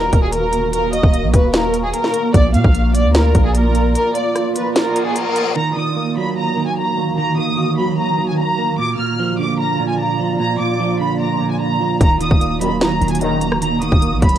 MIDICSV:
0, 0, Header, 1, 8, 480
1, 0, Start_track
1, 0, Key_signature, -6, "minor"
1, 0, Tempo, 402685
1, 873, Time_signature, 4, 2, 24, 8
1, 17145, End_track
2, 0, Start_track
2, 0, Title_t, "Violin section"
2, 0, Program_c, 0, 48
2, 0, Note_on_c, 0, 70, 91
2, 252, Note_off_c, 0, 70, 0
2, 272, Note_on_c, 0, 68, 76
2, 368, Note_off_c, 0, 68, 0
2, 391, Note_on_c, 0, 70, 81
2, 843, Note_off_c, 0, 70, 0
2, 873, Note_on_c, 0, 70, 99
2, 1065, Note_off_c, 0, 70, 0
2, 1111, Note_on_c, 0, 75, 80
2, 1563, Note_off_c, 0, 75, 0
2, 1593, Note_on_c, 0, 71, 78
2, 1784, Note_off_c, 0, 71, 0
2, 1832, Note_on_c, 0, 70, 82
2, 2171, Note_off_c, 0, 70, 0
2, 2190, Note_on_c, 0, 68, 81
2, 2287, Note_off_c, 0, 68, 0
2, 2312, Note_on_c, 0, 70, 91
2, 2763, Note_off_c, 0, 70, 0
2, 2793, Note_on_c, 0, 74, 100
2, 2985, Note_off_c, 0, 74, 0
2, 3033, Note_on_c, 0, 77, 73
2, 3484, Note_off_c, 0, 77, 0
2, 3512, Note_on_c, 0, 74, 88
2, 3704, Note_off_c, 0, 74, 0
2, 3755, Note_on_c, 0, 70, 88
2, 4092, Note_off_c, 0, 70, 0
2, 4114, Note_on_c, 0, 68, 83
2, 4209, Note_off_c, 0, 68, 0
2, 4235, Note_on_c, 0, 70, 84
2, 4685, Note_off_c, 0, 70, 0
2, 4713, Note_on_c, 0, 70, 109
2, 4904, Note_off_c, 0, 70, 0
2, 4952, Note_on_c, 0, 74, 79
2, 5404, Note_off_c, 0, 74, 0
2, 5432, Note_on_c, 0, 71, 79
2, 5624, Note_off_c, 0, 71, 0
2, 5672, Note_on_c, 0, 70, 82
2, 6011, Note_off_c, 0, 70, 0
2, 6032, Note_on_c, 0, 68, 78
2, 6128, Note_off_c, 0, 68, 0
2, 6155, Note_on_c, 0, 70, 88
2, 6605, Note_off_c, 0, 70, 0
2, 6632, Note_on_c, 0, 82, 106
2, 6824, Note_off_c, 0, 82, 0
2, 6871, Note_on_c, 0, 87, 78
2, 7323, Note_off_c, 0, 87, 0
2, 7353, Note_on_c, 0, 83, 87
2, 7545, Note_off_c, 0, 83, 0
2, 7594, Note_on_c, 0, 82, 92
2, 7932, Note_off_c, 0, 82, 0
2, 7953, Note_on_c, 0, 80, 78
2, 8049, Note_off_c, 0, 80, 0
2, 8071, Note_on_c, 0, 82, 86
2, 8523, Note_off_c, 0, 82, 0
2, 8553, Note_on_c, 0, 82, 99
2, 8744, Note_off_c, 0, 82, 0
2, 8791, Note_on_c, 0, 87, 81
2, 9243, Note_off_c, 0, 87, 0
2, 9272, Note_on_c, 0, 83, 82
2, 9464, Note_off_c, 0, 83, 0
2, 9513, Note_on_c, 0, 82, 87
2, 9852, Note_off_c, 0, 82, 0
2, 9872, Note_on_c, 0, 80, 87
2, 9968, Note_off_c, 0, 80, 0
2, 9991, Note_on_c, 0, 82, 92
2, 10443, Note_off_c, 0, 82, 0
2, 10473, Note_on_c, 0, 86, 104
2, 10664, Note_off_c, 0, 86, 0
2, 10710, Note_on_c, 0, 89, 75
2, 11163, Note_off_c, 0, 89, 0
2, 11191, Note_on_c, 0, 86, 89
2, 11383, Note_off_c, 0, 86, 0
2, 11434, Note_on_c, 0, 82, 90
2, 11772, Note_off_c, 0, 82, 0
2, 11792, Note_on_c, 0, 80, 82
2, 11888, Note_off_c, 0, 80, 0
2, 11914, Note_on_c, 0, 82, 83
2, 12365, Note_off_c, 0, 82, 0
2, 12393, Note_on_c, 0, 82, 108
2, 12584, Note_off_c, 0, 82, 0
2, 12633, Note_on_c, 0, 86, 80
2, 13084, Note_off_c, 0, 86, 0
2, 13114, Note_on_c, 0, 83, 82
2, 13305, Note_off_c, 0, 83, 0
2, 13353, Note_on_c, 0, 82, 83
2, 13691, Note_off_c, 0, 82, 0
2, 13713, Note_on_c, 0, 80, 80
2, 13809, Note_off_c, 0, 80, 0
2, 13835, Note_on_c, 0, 82, 89
2, 14285, Note_off_c, 0, 82, 0
2, 14312, Note_on_c, 0, 82, 105
2, 14504, Note_off_c, 0, 82, 0
2, 14553, Note_on_c, 0, 87, 78
2, 15004, Note_off_c, 0, 87, 0
2, 15034, Note_on_c, 0, 83, 89
2, 15225, Note_off_c, 0, 83, 0
2, 15274, Note_on_c, 0, 82, 92
2, 15612, Note_off_c, 0, 82, 0
2, 15632, Note_on_c, 0, 80, 81
2, 15728, Note_off_c, 0, 80, 0
2, 15750, Note_on_c, 0, 82, 88
2, 16202, Note_off_c, 0, 82, 0
2, 16232, Note_on_c, 0, 82, 96
2, 16424, Note_off_c, 0, 82, 0
2, 16472, Note_on_c, 0, 87, 79
2, 16924, Note_off_c, 0, 87, 0
2, 16953, Note_on_c, 0, 83, 79
2, 17144, Note_off_c, 0, 83, 0
2, 17145, End_track
3, 0, Start_track
3, 0, Title_t, "Ambient pad"
3, 0, Program_c, 1, 92
3, 0, Note_on_c, 1, 51, 81
3, 0, Note_on_c, 1, 58, 76
3, 0, Note_on_c, 1, 66, 91
3, 2754, Note_off_c, 1, 66, 0
3, 2755, Note_off_c, 1, 51, 0
3, 2794, Note_on_c, 1, 65, 73
3, 2794, Note_on_c, 1, 74, 94
3, 6585, Note_off_c, 1, 58, 0
3, 6595, Note_off_c, 1, 65, 0
3, 6595, Note_off_c, 1, 74, 0
3, 6633, Note_on_c, 1, 51, 84
3, 6633, Note_on_c, 1, 58, 76
3, 6633, Note_on_c, 1, 66, 91
3, 10435, Note_off_c, 1, 51, 0
3, 10435, Note_off_c, 1, 58, 0
3, 10435, Note_off_c, 1, 66, 0
3, 10473, Note_on_c, 1, 58, 84
3, 10473, Note_on_c, 1, 65, 77
3, 10473, Note_on_c, 1, 74, 94
3, 14274, Note_off_c, 1, 65, 0
3, 14274, Note_off_c, 1, 74, 0
3, 14314, Note_on_c, 1, 51, 84
3, 14315, Note_on_c, 1, 66, 93
3, 17145, Note_off_c, 1, 51, 0
3, 17145, Note_off_c, 1, 58, 0
3, 17145, Note_off_c, 1, 66, 0
3, 17145, End_track
4, 0, Start_track
4, 0, Title_t, "Clean electric guitar"
4, 0, Program_c, 2, 27
4, 6632, Note_on_c, 2, 51, 89
4, 6856, Note_off_c, 2, 51, 0
4, 6870, Note_on_c, 2, 51, 78
4, 7109, Note_on_c, 2, 58, 88
4, 7354, Note_on_c, 2, 54, 94
4, 7815, Note_off_c, 2, 51, 0
4, 7829, Note_on_c, 2, 51, 74
4, 8299, Note_off_c, 2, 58, 0
4, 8314, Note_on_c, 2, 58, 79
4, 8540, Note_off_c, 2, 51, 0
4, 8554, Note_off_c, 2, 54, 0
4, 8555, Note_on_c, 2, 51, 83
4, 8782, Note_off_c, 2, 51, 0
4, 8797, Note_on_c, 2, 51, 82
4, 9019, Note_off_c, 2, 58, 0
4, 9034, Note_on_c, 2, 58, 80
4, 9277, Note_on_c, 2, 54, 90
4, 9732, Note_off_c, 2, 51, 0
4, 9746, Note_on_c, 2, 51, 78
4, 10220, Note_off_c, 2, 58, 0
4, 10234, Note_on_c, 2, 58, 82
4, 10469, Note_on_c, 2, 46, 92
4, 10470, Note_off_c, 2, 51, 0
4, 10473, Note_off_c, 2, 58, 0
4, 10475, Note_off_c, 2, 54, 0
4, 10692, Note_off_c, 2, 46, 0
4, 10707, Note_on_c, 2, 46, 72
4, 10959, Note_on_c, 2, 53, 88
4, 11191, Note_on_c, 2, 50, 89
4, 11657, Note_off_c, 2, 46, 0
4, 11671, Note_on_c, 2, 46, 79
4, 12138, Note_off_c, 2, 53, 0
4, 12152, Note_on_c, 2, 53, 73
4, 12377, Note_off_c, 2, 46, 0
4, 12392, Note_off_c, 2, 50, 0
4, 12392, Note_on_c, 2, 46, 95
4, 12617, Note_off_c, 2, 46, 0
4, 12631, Note_on_c, 2, 46, 81
4, 12857, Note_off_c, 2, 53, 0
4, 12871, Note_on_c, 2, 53, 94
4, 13118, Note_on_c, 2, 50, 90
4, 13577, Note_off_c, 2, 46, 0
4, 13592, Note_on_c, 2, 46, 77
4, 14059, Note_off_c, 2, 53, 0
4, 14073, Note_on_c, 2, 53, 76
4, 14308, Note_off_c, 2, 50, 0
4, 14312, Note_off_c, 2, 46, 0
4, 14313, Note_off_c, 2, 53, 0
4, 14313, Note_on_c, 2, 51, 88
4, 14538, Note_off_c, 2, 51, 0
4, 14552, Note_on_c, 2, 51, 82
4, 14791, Note_on_c, 2, 58, 86
4, 15035, Note_on_c, 2, 54, 96
4, 15495, Note_off_c, 2, 51, 0
4, 15510, Note_on_c, 2, 51, 76
4, 15982, Note_off_c, 2, 58, 0
4, 15996, Note_on_c, 2, 58, 76
4, 16221, Note_off_c, 2, 51, 0
4, 16234, Note_off_c, 2, 54, 0
4, 16236, Note_on_c, 2, 51, 84
4, 16463, Note_off_c, 2, 51, 0
4, 16477, Note_on_c, 2, 51, 79
4, 16697, Note_off_c, 2, 58, 0
4, 16711, Note_on_c, 2, 58, 81
4, 16956, Note_on_c, 2, 54, 94
4, 17145, Note_off_c, 2, 51, 0
4, 17145, Note_off_c, 2, 54, 0
4, 17145, Note_off_c, 2, 58, 0
4, 17145, End_track
5, 0, Start_track
5, 0, Title_t, "Brass ensemble"
5, 0, Program_c, 3, 61
5, 15033, Note_on_c, 3, 34, 86
5, 15033, Note_on_c, 3, 42, 90
5, 15033, Note_on_c, 3, 51, 94
5, 15135, Note_off_c, 3, 34, 0
5, 15135, Note_off_c, 3, 42, 0
5, 15135, Note_off_c, 3, 51, 0
5, 15753, Note_on_c, 3, 34, 105
5, 15753, Note_on_c, 3, 42, 102
5, 15753, Note_on_c, 3, 51, 112
5, 16095, Note_off_c, 3, 34, 0
5, 16095, Note_off_c, 3, 42, 0
5, 16095, Note_off_c, 3, 51, 0
5, 17145, End_track
6, 0, Start_track
6, 0, Title_t, "808-style bass"
6, 0, Program_c, 4, 38
6, 153, Note_on_c, 4, 27, 105
6, 1190, Note_off_c, 4, 27, 0
6, 1232, Note_on_c, 4, 27, 107
6, 1472, Note_on_c, 4, 34, 102
6, 1489, Note_off_c, 4, 27, 0
6, 1586, Note_off_c, 4, 34, 0
6, 1594, Note_on_c, 4, 27, 102
6, 2285, Note_off_c, 4, 27, 0
6, 2792, Note_on_c, 4, 34, 109
6, 3032, Note_on_c, 4, 46, 98
6, 3049, Note_off_c, 4, 34, 0
6, 3146, Note_off_c, 4, 46, 0
6, 3152, Note_on_c, 4, 34, 111
6, 3631, Note_on_c, 4, 38, 103
6, 3649, Note_off_c, 4, 34, 0
6, 3974, Note_off_c, 4, 38, 0
6, 3992, Note_on_c, 4, 34, 107
6, 4713, Note_off_c, 4, 34, 0
6, 14313, Note_on_c, 4, 27, 112
6, 14658, Note_off_c, 4, 27, 0
6, 14673, Note_on_c, 4, 27, 101
6, 15480, Note_off_c, 4, 27, 0
6, 15513, Note_on_c, 4, 27, 103
6, 16550, Note_off_c, 4, 27, 0
6, 16593, Note_on_c, 4, 27, 108
6, 16833, Note_on_c, 4, 34, 100
6, 16851, Note_off_c, 4, 27, 0
6, 16947, Note_off_c, 4, 34, 0
6, 16954, Note_on_c, 4, 27, 102
6, 17145, Note_off_c, 4, 27, 0
6, 17145, End_track
7, 0, Start_track
7, 0, Title_t, "Reverse cymbal"
7, 0, Program_c, 5, 119
7, 5672, Note_on_c, 5, 60, 89
7, 6633, Note_off_c, 5, 60, 0
7, 17145, End_track
8, 0, Start_track
8, 0, Title_t, "Drums"
8, 151, Note_on_c, 9, 42, 81
8, 153, Note_on_c, 9, 36, 80
8, 270, Note_off_c, 9, 42, 0
8, 272, Note_off_c, 9, 36, 0
8, 388, Note_on_c, 9, 42, 87
8, 507, Note_off_c, 9, 42, 0
8, 628, Note_on_c, 9, 42, 76
8, 748, Note_off_c, 9, 42, 0
8, 873, Note_on_c, 9, 42, 86
8, 992, Note_off_c, 9, 42, 0
8, 1109, Note_on_c, 9, 42, 66
8, 1228, Note_off_c, 9, 42, 0
8, 1233, Note_on_c, 9, 36, 98
8, 1352, Note_off_c, 9, 36, 0
8, 1354, Note_on_c, 9, 42, 73
8, 1473, Note_off_c, 9, 42, 0
8, 1593, Note_on_c, 9, 36, 96
8, 1593, Note_on_c, 9, 42, 91
8, 1712, Note_off_c, 9, 42, 0
8, 1713, Note_off_c, 9, 36, 0
8, 1831, Note_on_c, 9, 42, 73
8, 1833, Note_on_c, 9, 38, 111
8, 1951, Note_off_c, 9, 42, 0
8, 1952, Note_off_c, 9, 38, 0
8, 2071, Note_on_c, 9, 42, 83
8, 2190, Note_off_c, 9, 42, 0
8, 2307, Note_on_c, 9, 42, 88
8, 2427, Note_off_c, 9, 42, 0
8, 2433, Note_on_c, 9, 38, 66
8, 2548, Note_on_c, 9, 42, 75
8, 2552, Note_off_c, 9, 38, 0
8, 2667, Note_off_c, 9, 42, 0
8, 2792, Note_on_c, 9, 36, 112
8, 2793, Note_on_c, 9, 42, 86
8, 2912, Note_off_c, 9, 36, 0
8, 2912, Note_off_c, 9, 42, 0
8, 3029, Note_on_c, 9, 42, 67
8, 3148, Note_off_c, 9, 42, 0
8, 3152, Note_on_c, 9, 36, 98
8, 3272, Note_off_c, 9, 36, 0
8, 3273, Note_on_c, 9, 42, 72
8, 3392, Note_off_c, 9, 42, 0
8, 3512, Note_on_c, 9, 42, 90
8, 3631, Note_off_c, 9, 42, 0
8, 3751, Note_on_c, 9, 42, 77
8, 3752, Note_on_c, 9, 38, 113
8, 3870, Note_off_c, 9, 42, 0
8, 3871, Note_off_c, 9, 38, 0
8, 3990, Note_on_c, 9, 42, 79
8, 3992, Note_on_c, 9, 36, 78
8, 4110, Note_off_c, 9, 42, 0
8, 4111, Note_off_c, 9, 36, 0
8, 4228, Note_on_c, 9, 42, 86
8, 4347, Note_off_c, 9, 42, 0
8, 4468, Note_on_c, 9, 42, 73
8, 4588, Note_off_c, 9, 42, 0
8, 4713, Note_on_c, 9, 42, 85
8, 4832, Note_off_c, 9, 42, 0
8, 4948, Note_on_c, 9, 42, 64
8, 5067, Note_off_c, 9, 42, 0
8, 5192, Note_on_c, 9, 37, 63
8, 5193, Note_on_c, 9, 42, 74
8, 5311, Note_off_c, 9, 37, 0
8, 5312, Note_off_c, 9, 42, 0
8, 5432, Note_on_c, 9, 42, 88
8, 5551, Note_off_c, 9, 42, 0
8, 5671, Note_on_c, 9, 42, 77
8, 5672, Note_on_c, 9, 38, 111
8, 5790, Note_off_c, 9, 42, 0
8, 5792, Note_off_c, 9, 38, 0
8, 5911, Note_on_c, 9, 42, 81
8, 6030, Note_off_c, 9, 42, 0
8, 6148, Note_on_c, 9, 42, 87
8, 6267, Note_off_c, 9, 42, 0
8, 6388, Note_on_c, 9, 42, 74
8, 6508, Note_off_c, 9, 42, 0
8, 14313, Note_on_c, 9, 36, 115
8, 14314, Note_on_c, 9, 42, 90
8, 14432, Note_off_c, 9, 36, 0
8, 14433, Note_off_c, 9, 42, 0
8, 14549, Note_on_c, 9, 42, 66
8, 14668, Note_off_c, 9, 42, 0
8, 14673, Note_on_c, 9, 36, 97
8, 14792, Note_off_c, 9, 36, 0
8, 14795, Note_on_c, 9, 42, 70
8, 14914, Note_off_c, 9, 42, 0
8, 15034, Note_on_c, 9, 42, 87
8, 15153, Note_off_c, 9, 42, 0
8, 15272, Note_on_c, 9, 42, 69
8, 15273, Note_on_c, 9, 38, 115
8, 15391, Note_off_c, 9, 42, 0
8, 15392, Note_off_c, 9, 38, 0
8, 15514, Note_on_c, 9, 42, 47
8, 15593, Note_off_c, 9, 42, 0
8, 15593, Note_on_c, 9, 42, 63
8, 15673, Note_off_c, 9, 42, 0
8, 15673, Note_on_c, 9, 42, 79
8, 15748, Note_off_c, 9, 42, 0
8, 15748, Note_on_c, 9, 42, 80
8, 15868, Note_off_c, 9, 42, 0
8, 15988, Note_on_c, 9, 42, 81
8, 16108, Note_off_c, 9, 42, 0
8, 16114, Note_on_c, 9, 37, 90
8, 16233, Note_off_c, 9, 37, 0
8, 16233, Note_on_c, 9, 42, 89
8, 16352, Note_off_c, 9, 42, 0
8, 16469, Note_on_c, 9, 42, 66
8, 16588, Note_off_c, 9, 42, 0
8, 16593, Note_on_c, 9, 36, 101
8, 16712, Note_off_c, 9, 36, 0
8, 16714, Note_on_c, 9, 42, 71
8, 16833, Note_off_c, 9, 42, 0
8, 16953, Note_on_c, 9, 42, 74
8, 16954, Note_on_c, 9, 36, 99
8, 17033, Note_off_c, 9, 42, 0
8, 17033, Note_on_c, 9, 42, 72
8, 17073, Note_off_c, 9, 36, 0
8, 17145, Note_off_c, 9, 42, 0
8, 17145, End_track
0, 0, End_of_file